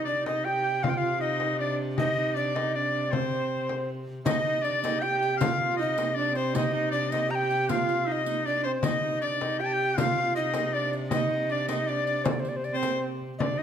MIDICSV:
0, 0, Header, 1, 7, 480
1, 0, Start_track
1, 0, Key_signature, -3, "minor"
1, 0, Tempo, 380711
1, 1055, Time_signature, 3, 2, 24, 8
1, 17182, End_track
2, 0, Start_track
2, 0, Title_t, "Recorder"
2, 0, Program_c, 0, 74
2, 88, Note_on_c, 0, 74, 73
2, 314, Note_off_c, 0, 74, 0
2, 341, Note_on_c, 0, 75, 82
2, 563, Note_on_c, 0, 79, 92
2, 582, Note_off_c, 0, 75, 0
2, 1049, Note_on_c, 0, 77, 90
2, 1068, Note_off_c, 0, 79, 0
2, 1129, Note_on_c, 0, 79, 77
2, 1148, Note_off_c, 0, 77, 0
2, 1233, Note_on_c, 0, 77, 91
2, 1252, Note_off_c, 0, 79, 0
2, 1529, Note_on_c, 0, 75, 83
2, 1548, Note_off_c, 0, 77, 0
2, 2024, Note_on_c, 0, 74, 75
2, 2043, Note_off_c, 0, 75, 0
2, 2260, Note_off_c, 0, 74, 0
2, 2513, Note_on_c, 0, 75, 94
2, 2952, Note_off_c, 0, 75, 0
2, 2981, Note_on_c, 0, 74, 72
2, 3224, Note_on_c, 0, 75, 79
2, 3243, Note_off_c, 0, 74, 0
2, 3473, Note_on_c, 0, 74, 80
2, 3492, Note_off_c, 0, 75, 0
2, 3964, Note_on_c, 0, 72, 75
2, 3983, Note_off_c, 0, 74, 0
2, 4912, Note_off_c, 0, 72, 0
2, 5362, Note_on_c, 0, 75, 93
2, 5855, Note_on_c, 0, 74, 85
2, 5874, Note_off_c, 0, 75, 0
2, 6087, Note_off_c, 0, 74, 0
2, 6094, Note_on_c, 0, 75, 94
2, 6331, Note_on_c, 0, 79, 97
2, 6350, Note_off_c, 0, 75, 0
2, 6801, Note_off_c, 0, 79, 0
2, 6808, Note_on_c, 0, 77, 106
2, 7260, Note_off_c, 0, 77, 0
2, 7324, Note_on_c, 0, 75, 87
2, 7760, Note_off_c, 0, 75, 0
2, 7805, Note_on_c, 0, 74, 93
2, 8026, Note_on_c, 0, 72, 87
2, 8045, Note_off_c, 0, 74, 0
2, 8263, Note_off_c, 0, 72, 0
2, 8269, Note_on_c, 0, 75, 100
2, 8712, Note_off_c, 0, 75, 0
2, 8730, Note_on_c, 0, 74, 77
2, 8958, Note_off_c, 0, 74, 0
2, 8975, Note_on_c, 0, 75, 89
2, 9211, Note_on_c, 0, 82, 87
2, 9230, Note_off_c, 0, 75, 0
2, 9270, Note_on_c, 0, 79, 95
2, 9282, Note_off_c, 0, 82, 0
2, 9696, Note_off_c, 0, 79, 0
2, 9711, Note_on_c, 0, 77, 96
2, 10187, Note_off_c, 0, 77, 0
2, 10187, Note_on_c, 0, 77, 79
2, 10236, Note_on_c, 0, 75, 85
2, 10248, Note_off_c, 0, 77, 0
2, 10664, Note_off_c, 0, 75, 0
2, 10673, Note_on_c, 0, 74, 91
2, 10908, Note_on_c, 0, 72, 79
2, 10927, Note_off_c, 0, 74, 0
2, 11160, Note_on_c, 0, 75, 94
2, 11179, Note_off_c, 0, 72, 0
2, 11647, Note_on_c, 0, 74, 79
2, 11666, Note_off_c, 0, 75, 0
2, 11873, Note_on_c, 0, 75, 86
2, 11892, Note_off_c, 0, 74, 0
2, 12112, Note_on_c, 0, 79, 92
2, 12131, Note_off_c, 0, 75, 0
2, 12586, Note_off_c, 0, 79, 0
2, 12600, Note_on_c, 0, 77, 101
2, 13037, Note_off_c, 0, 77, 0
2, 13066, Note_on_c, 0, 75, 81
2, 13549, Note_on_c, 0, 74, 83
2, 13568, Note_off_c, 0, 75, 0
2, 13785, Note_off_c, 0, 74, 0
2, 14040, Note_on_c, 0, 75, 90
2, 14524, Note_on_c, 0, 74, 76
2, 14542, Note_off_c, 0, 75, 0
2, 14749, Note_off_c, 0, 74, 0
2, 14756, Note_on_c, 0, 75, 76
2, 14992, Note_on_c, 0, 74, 81
2, 15011, Note_off_c, 0, 75, 0
2, 15439, Note_on_c, 0, 72, 59
2, 15458, Note_off_c, 0, 74, 0
2, 15532, Note_on_c, 0, 74, 65
2, 15551, Note_off_c, 0, 72, 0
2, 15632, Note_on_c, 0, 72, 60
2, 15651, Note_off_c, 0, 74, 0
2, 15745, Note_on_c, 0, 74, 56
2, 15764, Note_off_c, 0, 72, 0
2, 15841, Note_on_c, 0, 72, 66
2, 15860, Note_off_c, 0, 74, 0
2, 15941, Note_on_c, 0, 74, 59
2, 15959, Note_off_c, 0, 72, 0
2, 16099, Note_on_c, 0, 72, 71
2, 16118, Note_off_c, 0, 74, 0
2, 16436, Note_off_c, 0, 72, 0
2, 16877, Note_on_c, 0, 75, 75
2, 16924, Note_on_c, 0, 74, 82
2, 16936, Note_off_c, 0, 75, 0
2, 17130, Note_on_c, 0, 75, 74
2, 17149, Note_off_c, 0, 74, 0
2, 17182, Note_off_c, 0, 75, 0
2, 17182, End_track
3, 0, Start_track
3, 0, Title_t, "Shawm"
3, 0, Program_c, 1, 111
3, 59, Note_on_c, 1, 74, 73
3, 299, Note_off_c, 1, 74, 0
3, 332, Note_on_c, 1, 75, 69
3, 562, Note_on_c, 1, 79, 75
3, 581, Note_off_c, 1, 75, 0
3, 1041, Note_on_c, 1, 77, 78
3, 1060, Note_off_c, 1, 79, 0
3, 1212, Note_off_c, 1, 77, 0
3, 1220, Note_on_c, 1, 77, 72
3, 1508, Note_off_c, 1, 77, 0
3, 1520, Note_on_c, 1, 75, 76
3, 1974, Note_off_c, 1, 75, 0
3, 2003, Note_on_c, 1, 74, 73
3, 2232, Note_off_c, 1, 74, 0
3, 2491, Note_on_c, 1, 75, 79
3, 2959, Note_on_c, 1, 74, 74
3, 2978, Note_off_c, 1, 75, 0
3, 3448, Note_off_c, 1, 74, 0
3, 3456, Note_on_c, 1, 74, 72
3, 3924, Note_on_c, 1, 72, 63
3, 3943, Note_off_c, 1, 74, 0
3, 4892, Note_off_c, 1, 72, 0
3, 5375, Note_on_c, 1, 75, 85
3, 5828, Note_on_c, 1, 74, 87
3, 5847, Note_off_c, 1, 75, 0
3, 6297, Note_on_c, 1, 79, 96
3, 6316, Note_off_c, 1, 74, 0
3, 6531, Note_off_c, 1, 79, 0
3, 6539, Note_on_c, 1, 79, 78
3, 6766, Note_off_c, 1, 79, 0
3, 6774, Note_on_c, 1, 77, 92
3, 7242, Note_off_c, 1, 77, 0
3, 7270, Note_on_c, 1, 75, 85
3, 7755, Note_on_c, 1, 74, 86
3, 7773, Note_off_c, 1, 75, 0
3, 8002, Note_off_c, 1, 74, 0
3, 8010, Note_on_c, 1, 72, 74
3, 8264, Note_on_c, 1, 75, 83
3, 8282, Note_off_c, 1, 72, 0
3, 8479, Note_off_c, 1, 75, 0
3, 8487, Note_on_c, 1, 75, 74
3, 8703, Note_off_c, 1, 75, 0
3, 8710, Note_on_c, 1, 74, 83
3, 8973, Note_on_c, 1, 75, 75
3, 8992, Note_off_c, 1, 74, 0
3, 9214, Note_on_c, 1, 79, 90
3, 9233, Note_off_c, 1, 75, 0
3, 9695, Note_on_c, 1, 77, 90
3, 9714, Note_off_c, 1, 79, 0
3, 10187, Note_on_c, 1, 75, 80
3, 10206, Note_off_c, 1, 77, 0
3, 10665, Note_on_c, 1, 74, 75
3, 10684, Note_off_c, 1, 75, 0
3, 10879, Note_off_c, 1, 74, 0
3, 10887, Note_on_c, 1, 72, 61
3, 10998, Note_off_c, 1, 72, 0
3, 11138, Note_on_c, 1, 75, 80
3, 11586, Note_off_c, 1, 75, 0
3, 11616, Note_on_c, 1, 74, 78
3, 12065, Note_off_c, 1, 74, 0
3, 12090, Note_on_c, 1, 79, 78
3, 12170, Note_on_c, 1, 81, 72
3, 12189, Note_off_c, 1, 79, 0
3, 12269, Note_on_c, 1, 79, 86
3, 12288, Note_off_c, 1, 81, 0
3, 12566, Note_on_c, 1, 77, 86
3, 12585, Note_off_c, 1, 79, 0
3, 13043, Note_off_c, 1, 77, 0
3, 13051, Note_on_c, 1, 75, 74
3, 13530, Note_on_c, 1, 74, 79
3, 13549, Note_off_c, 1, 75, 0
3, 13775, Note_off_c, 1, 74, 0
3, 13998, Note_on_c, 1, 75, 84
3, 14232, Note_off_c, 1, 75, 0
3, 14504, Note_on_c, 1, 74, 74
3, 14716, Note_off_c, 1, 74, 0
3, 14723, Note_on_c, 1, 75, 69
3, 14969, Note_on_c, 1, 74, 69
3, 14988, Note_off_c, 1, 75, 0
3, 15198, Note_off_c, 1, 74, 0
3, 15205, Note_on_c, 1, 74, 62
3, 15435, Note_off_c, 1, 74, 0
3, 16054, Note_on_c, 1, 72, 85
3, 16388, Note_off_c, 1, 72, 0
3, 16893, Note_on_c, 1, 74, 68
3, 17123, Note_on_c, 1, 75, 67
3, 17142, Note_off_c, 1, 74, 0
3, 17182, Note_off_c, 1, 75, 0
3, 17182, End_track
4, 0, Start_track
4, 0, Title_t, "Viola"
4, 0, Program_c, 2, 41
4, 91, Note_on_c, 2, 62, 66
4, 295, Note_off_c, 2, 62, 0
4, 302, Note_on_c, 2, 63, 71
4, 573, Note_on_c, 2, 67, 76
4, 592, Note_off_c, 2, 63, 0
4, 1044, Note_on_c, 2, 65, 81
4, 1063, Note_off_c, 2, 67, 0
4, 1198, Note_off_c, 2, 65, 0
4, 1205, Note_on_c, 2, 65, 74
4, 1501, Note_off_c, 2, 65, 0
4, 1531, Note_on_c, 2, 63, 70
4, 2023, Note_on_c, 2, 62, 75
4, 2041, Note_off_c, 2, 63, 0
4, 2260, Note_off_c, 2, 62, 0
4, 2489, Note_on_c, 2, 63, 79
4, 2716, Note_off_c, 2, 63, 0
4, 2747, Note_on_c, 2, 63, 72
4, 2968, Note_on_c, 2, 62, 69
4, 2987, Note_off_c, 2, 63, 0
4, 3219, Note_on_c, 2, 63, 70
4, 3238, Note_off_c, 2, 62, 0
4, 3471, Note_on_c, 2, 62, 73
4, 3490, Note_off_c, 2, 63, 0
4, 3681, Note_off_c, 2, 62, 0
4, 3689, Note_on_c, 2, 62, 66
4, 3916, Note_off_c, 2, 62, 0
4, 3923, Note_on_c, 2, 60, 64
4, 4841, Note_off_c, 2, 60, 0
4, 5364, Note_on_c, 2, 63, 85
4, 5594, Note_off_c, 2, 63, 0
4, 5608, Note_on_c, 2, 63, 78
4, 5816, Note_off_c, 2, 63, 0
4, 5824, Note_on_c, 2, 62, 72
4, 6102, Note_on_c, 2, 63, 83
4, 6121, Note_off_c, 2, 62, 0
4, 6344, Note_on_c, 2, 67, 85
4, 6362, Note_off_c, 2, 63, 0
4, 6834, Note_on_c, 2, 65, 80
4, 6853, Note_off_c, 2, 67, 0
4, 7061, Note_off_c, 2, 65, 0
4, 7068, Note_on_c, 2, 65, 83
4, 7302, Note_on_c, 2, 63, 78
4, 7321, Note_off_c, 2, 65, 0
4, 7764, Note_off_c, 2, 63, 0
4, 7772, Note_on_c, 2, 62, 88
4, 7999, Note_off_c, 2, 62, 0
4, 8017, Note_on_c, 2, 60, 75
4, 8243, Note_on_c, 2, 63, 89
4, 8262, Note_off_c, 2, 60, 0
4, 8484, Note_off_c, 2, 63, 0
4, 8491, Note_on_c, 2, 63, 84
4, 8741, Note_on_c, 2, 62, 76
4, 8760, Note_off_c, 2, 63, 0
4, 8975, Note_on_c, 2, 63, 72
4, 8994, Note_off_c, 2, 62, 0
4, 9204, Note_off_c, 2, 63, 0
4, 9212, Note_on_c, 2, 67, 85
4, 9697, Note_on_c, 2, 65, 90
4, 9716, Note_off_c, 2, 67, 0
4, 10173, Note_on_c, 2, 63, 82
4, 10192, Note_off_c, 2, 65, 0
4, 10417, Note_off_c, 2, 63, 0
4, 10423, Note_on_c, 2, 63, 76
4, 10668, Note_on_c, 2, 62, 81
4, 10687, Note_off_c, 2, 63, 0
4, 10923, Note_on_c, 2, 60, 71
4, 10942, Note_off_c, 2, 62, 0
4, 11165, Note_on_c, 2, 63, 78
4, 11184, Note_off_c, 2, 60, 0
4, 11377, Note_off_c, 2, 63, 0
4, 11384, Note_on_c, 2, 63, 72
4, 11622, Note_on_c, 2, 62, 66
4, 11640, Note_off_c, 2, 63, 0
4, 11882, Note_on_c, 2, 63, 74
4, 11901, Note_off_c, 2, 62, 0
4, 12098, Note_on_c, 2, 67, 88
4, 12117, Note_off_c, 2, 63, 0
4, 12579, Note_off_c, 2, 67, 0
4, 12586, Note_on_c, 2, 65, 80
4, 13069, Note_on_c, 2, 63, 77
4, 13088, Note_off_c, 2, 65, 0
4, 13562, Note_on_c, 2, 62, 70
4, 13581, Note_off_c, 2, 63, 0
4, 13792, Note_off_c, 2, 62, 0
4, 14012, Note_on_c, 2, 63, 82
4, 14502, Note_on_c, 2, 62, 72
4, 14521, Note_off_c, 2, 63, 0
4, 14746, Note_on_c, 2, 63, 78
4, 14765, Note_off_c, 2, 62, 0
4, 14987, Note_on_c, 2, 62, 69
4, 15006, Note_off_c, 2, 63, 0
4, 15463, Note_off_c, 2, 62, 0
4, 16053, Note_on_c, 2, 60, 80
4, 16387, Note_off_c, 2, 60, 0
4, 16899, Note_on_c, 2, 62, 68
4, 17115, Note_on_c, 2, 63, 73
4, 17134, Note_off_c, 2, 62, 0
4, 17182, Note_off_c, 2, 63, 0
4, 17182, End_track
5, 0, Start_track
5, 0, Title_t, "Viola da gamba"
5, 0, Program_c, 3, 42
5, 0, Note_on_c, 3, 48, 71
5, 5376, Note_off_c, 3, 48, 0
5, 5383, Note_on_c, 3, 48, 72
5, 11113, Note_off_c, 3, 48, 0
5, 11121, Note_on_c, 3, 48, 74
5, 16858, Note_off_c, 3, 48, 0
5, 16865, Note_on_c, 3, 48, 70
5, 17182, Note_off_c, 3, 48, 0
5, 17182, End_track
6, 0, Start_track
6, 0, Title_t, "Frame drum"
6, 332, Note_on_c, 9, 64, 70
6, 458, Note_off_c, 9, 64, 0
6, 1058, Note_on_c, 9, 64, 77
6, 1184, Note_off_c, 9, 64, 0
6, 1289, Note_on_c, 9, 64, 25
6, 1415, Note_off_c, 9, 64, 0
6, 1766, Note_on_c, 9, 64, 60
6, 1892, Note_off_c, 9, 64, 0
6, 2494, Note_on_c, 9, 64, 76
6, 2620, Note_off_c, 9, 64, 0
6, 2734, Note_on_c, 9, 64, 24
6, 2861, Note_off_c, 9, 64, 0
6, 3230, Note_on_c, 9, 64, 62
6, 3356, Note_off_c, 9, 64, 0
6, 3945, Note_on_c, 9, 64, 77
6, 4071, Note_off_c, 9, 64, 0
6, 4201, Note_on_c, 9, 64, 24
6, 4327, Note_off_c, 9, 64, 0
6, 4658, Note_on_c, 9, 64, 60
6, 4784, Note_off_c, 9, 64, 0
6, 5137, Note_on_c, 9, 64, 24
6, 5263, Note_off_c, 9, 64, 0
6, 5370, Note_on_c, 9, 64, 94
6, 5496, Note_off_c, 9, 64, 0
6, 5630, Note_on_c, 9, 64, 28
6, 5756, Note_off_c, 9, 64, 0
6, 6113, Note_on_c, 9, 64, 70
6, 6239, Note_off_c, 9, 64, 0
6, 6823, Note_on_c, 9, 64, 100
6, 6949, Note_off_c, 9, 64, 0
6, 7065, Note_on_c, 9, 64, 30
6, 7191, Note_off_c, 9, 64, 0
6, 7546, Note_on_c, 9, 64, 71
6, 7672, Note_off_c, 9, 64, 0
6, 8272, Note_on_c, 9, 64, 71
6, 8398, Note_off_c, 9, 64, 0
6, 8508, Note_on_c, 9, 64, 21
6, 8634, Note_off_c, 9, 64, 0
6, 9001, Note_on_c, 9, 64, 61
6, 9127, Note_off_c, 9, 64, 0
6, 9707, Note_on_c, 9, 64, 75
6, 9833, Note_off_c, 9, 64, 0
6, 9950, Note_on_c, 9, 64, 27
6, 10076, Note_off_c, 9, 64, 0
6, 10665, Note_on_c, 9, 64, 28
6, 10791, Note_off_c, 9, 64, 0
6, 11130, Note_on_c, 9, 64, 91
6, 11256, Note_off_c, 9, 64, 0
6, 11390, Note_on_c, 9, 64, 26
6, 11516, Note_off_c, 9, 64, 0
6, 11868, Note_on_c, 9, 64, 73
6, 11994, Note_off_c, 9, 64, 0
6, 12581, Note_on_c, 9, 64, 90
6, 12707, Note_off_c, 9, 64, 0
6, 12824, Note_on_c, 9, 64, 27
6, 12950, Note_off_c, 9, 64, 0
6, 13285, Note_on_c, 9, 64, 75
6, 13411, Note_off_c, 9, 64, 0
6, 14008, Note_on_c, 9, 64, 82
6, 14134, Note_off_c, 9, 64, 0
6, 14262, Note_on_c, 9, 64, 29
6, 14388, Note_off_c, 9, 64, 0
6, 14740, Note_on_c, 9, 64, 81
6, 14866, Note_off_c, 9, 64, 0
6, 15451, Note_on_c, 9, 64, 97
6, 15577, Note_off_c, 9, 64, 0
6, 16172, Note_on_c, 9, 64, 70
6, 16298, Note_off_c, 9, 64, 0
6, 16659, Note_on_c, 9, 64, 25
6, 16786, Note_off_c, 9, 64, 0
6, 16898, Note_on_c, 9, 64, 80
6, 17024, Note_off_c, 9, 64, 0
6, 17182, End_track
7, 0, Start_track
7, 0, Title_t, "Riq"
7, 5375, Note_on_c, 9, 54, 75
7, 5501, Note_off_c, 9, 54, 0
7, 5859, Note_on_c, 9, 54, 20
7, 5985, Note_off_c, 9, 54, 0
7, 6098, Note_on_c, 9, 54, 53
7, 6224, Note_off_c, 9, 54, 0
7, 6586, Note_on_c, 9, 54, 25
7, 6712, Note_off_c, 9, 54, 0
7, 6817, Note_on_c, 9, 54, 67
7, 6943, Note_off_c, 9, 54, 0
7, 7302, Note_on_c, 9, 54, 20
7, 7429, Note_off_c, 9, 54, 0
7, 7536, Note_on_c, 9, 54, 52
7, 7662, Note_off_c, 9, 54, 0
7, 8010, Note_on_c, 9, 54, 21
7, 8137, Note_off_c, 9, 54, 0
7, 8256, Note_on_c, 9, 54, 63
7, 8382, Note_off_c, 9, 54, 0
7, 8739, Note_on_c, 9, 54, 20
7, 8865, Note_off_c, 9, 54, 0
7, 8979, Note_on_c, 9, 54, 50
7, 9105, Note_off_c, 9, 54, 0
7, 9464, Note_on_c, 9, 54, 22
7, 9590, Note_off_c, 9, 54, 0
7, 9700, Note_on_c, 9, 54, 63
7, 9826, Note_off_c, 9, 54, 0
7, 9946, Note_on_c, 9, 54, 19
7, 10072, Note_off_c, 9, 54, 0
7, 10419, Note_on_c, 9, 54, 47
7, 10545, Note_off_c, 9, 54, 0
7, 11142, Note_on_c, 9, 54, 58
7, 11268, Note_off_c, 9, 54, 0
7, 11622, Note_on_c, 9, 54, 19
7, 11748, Note_off_c, 9, 54, 0
7, 12587, Note_on_c, 9, 54, 62
7, 12713, Note_off_c, 9, 54, 0
7, 13059, Note_on_c, 9, 54, 19
7, 13185, Note_off_c, 9, 54, 0
7, 13293, Note_on_c, 9, 54, 49
7, 13419, Note_off_c, 9, 54, 0
7, 13780, Note_on_c, 9, 54, 20
7, 13906, Note_off_c, 9, 54, 0
7, 14015, Note_on_c, 9, 54, 63
7, 14141, Note_off_c, 9, 54, 0
7, 14494, Note_on_c, 9, 54, 18
7, 14620, Note_off_c, 9, 54, 0
7, 14732, Note_on_c, 9, 54, 47
7, 14859, Note_off_c, 9, 54, 0
7, 15218, Note_on_c, 9, 54, 19
7, 15344, Note_off_c, 9, 54, 0
7, 15450, Note_on_c, 9, 54, 56
7, 15576, Note_off_c, 9, 54, 0
7, 15694, Note_on_c, 9, 54, 19
7, 15820, Note_off_c, 9, 54, 0
7, 15937, Note_on_c, 9, 54, 18
7, 16063, Note_off_c, 9, 54, 0
7, 16174, Note_on_c, 9, 54, 46
7, 16300, Note_off_c, 9, 54, 0
7, 17182, End_track
0, 0, End_of_file